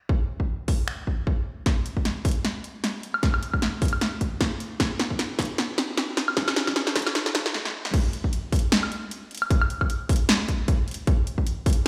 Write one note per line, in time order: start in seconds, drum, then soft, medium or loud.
0.09 kick loud
0.40 kick medium
0.68 kick medium
0.68 open hi-hat medium
0.88 finger snap medium
1.07 kick medium
1.27 kick medium
1.66 kick loud
1.66 snare soft
1.66 closed hi-hat medium
1.86 closed hi-hat medium
1.97 kick medium
2.05 snare soft
2.05 closed hi-hat medium
2.25 kick loud
2.25 closed hi-hat medium
2.25 open hi-hat medium
2.31 closed hi-hat medium
2.45 snare soft
2.45 closed hi-hat medium
2.64 closed hi-hat medium
2.84 snare medium
2.84 closed hi-hat medium
3.03 closed hi-hat medium
3.14 high woodblock medium
3.23 kick loud
3.23 snare medium
3.23 closed hi-hat medium
3.34 high woodblock medium
3.43 closed hi-hat medium
3.54 kick medium
3.54 high woodblock medium
3.62 snare medium
3.62 closed hi-hat medium
3.82 kick loud
3.82 closed hi-hat medium
3.82 open hi-hat medium
3.88 closed hi-hat medium
3.93 high woodblock medium
4.01 snare medium
4.01 closed hi-hat medium
4.21 kick medium
4.21 closed hi-hat medium
4.41 kick loud
4.41 snare medium
4.41 closed hi-hat medium
4.60 closed hi-hat medium
4.80 kick loud
4.80 snare medium
4.80 closed hi-hat medium
5.00 snare medium
5.00 closed hi-hat medium
5.10 kick medium
5.19 snare medium
5.19 closed hi-hat medium
5.39 kick loud
5.39 snare medium
5.39 closed hi-hat medium
5.39 open hi-hat medium
5.45 closed hi-hat medium
5.58 snare medium
5.58 closed hi-hat medium
5.78 snare medium
5.78 closed hi-hat medium
5.97 snare medium
5.97 closed hi-hat medium
6.17 snare medium
6.17 closed hi-hat medium
6.28 high woodblock medium
6.37 kick loud
6.37 snare medium
6.37 closed hi-hat medium
6.48 snare medium
6.48 high woodblock medium
6.56 snare medium
6.56 closed hi-hat medium
6.67 kick medium
6.67 snare medium
6.67 high woodblock medium
6.76 snare medium
6.76 closed hi-hat medium
6.87 snare medium
6.96 kick loud
6.96 snare loud
6.96 closed hi-hat medium
6.96 open hi-hat medium
7.02 closed hi-hat medium
7.07 snare medium
7.07 high woodblock medium
7.15 snare loud
7.15 closed hi-hat medium
7.26 snare medium
7.35 kick medium
7.35 snare loud
7.35 closed hi-hat medium
7.46 snare medium
7.54 snare medium
7.65 snare medium
7.85 snare medium
7.94 kick loud
7.94 closed hi-hat medium
7.94 crash loud
8.13 closed hi-hat medium
8.24 kick medium
8.33 closed hi-hat medium
8.52 kick loud
8.52 closed hi-hat medium
8.52 open hi-hat medium
8.59 closed hi-hat medium
8.72 snare loud
8.72 closed hi-hat medium
8.83 high woodblock medium
8.92 closed hi-hat medium
9.11 closed hi-hat medium
9.31 closed hi-hat medium
9.35 closed hi-hat medium
9.38 closed hi-hat medium
9.42 high woodblock medium
9.50 kick loud
9.50 closed hi-hat medium
9.62 high woodblock medium
9.70 closed hi-hat medium
9.81 kick medium
9.81 high woodblock medium
9.90 closed hi-hat medium
10.09 kick loud
10.09 closed hi-hat medium
10.09 open hi-hat medium
10.16 closed hi-hat medium
10.29 snare loud
10.29 closed hi-hat medium
10.48 kick medium
10.48 closed hi-hat medium
10.68 kick loud
10.68 closed hi-hat medium
10.88 closed hi-hat medium
10.91 closed hi-hat medium
10.94 closed hi-hat medium
11.07 kick loud
11.07 closed hi-hat medium
11.27 closed hi-hat medium
11.38 kick medium
11.47 closed hi-hat medium
11.66 kick loud
11.66 closed hi-hat medium
11.66 open hi-hat medium
11.73 closed hi-hat medium